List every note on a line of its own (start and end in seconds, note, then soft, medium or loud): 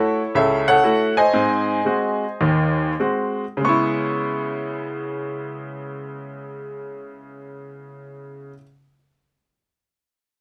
0.00 0.20 A3 soft
0.00 0.79 E4 soft
0.00 0.20 F#4 soft
0.00 0.35 A4 soft
0.00 0.35 C#5 medium
0.35 0.77 C#2 medium
0.35 0.77 C#3 medium
0.35 0.68 A4 medium
0.35 0.67 C#5 medium
0.35 0.65 E5 medium
0.68 1.30 A4 medium
0.68 1.30 C#5 medium
0.68 1.18 F#5 medium
0.84 1.18 A3 soft
0.84 1.18 E4 soft
0.84 1.18 F#4 medium
1.17 2.97 C5 medium
1.17 2.97 D#5 medium
1.17 2.96 G#5 medium
1.33 1.79 G#2 medium
1.33 1.79 C4 medium
1.85 2.23 G#3 soft
1.85 2.24 C4 soft
1.85 2.24 F#4 medium
2.41 2.92 D#2 medium
2.41 2.92 D#3 medium
3.00 3.43 G#3 soft
3.00 3.43 C4 soft
3.00 3.44 F#4 soft
3.57 8.50 C#3 medium
3.57 8.54 G#3 medium
3.65 8.58 B3 medium
3.65 8.53 C#6 medium
3.69 8.61 E4 medium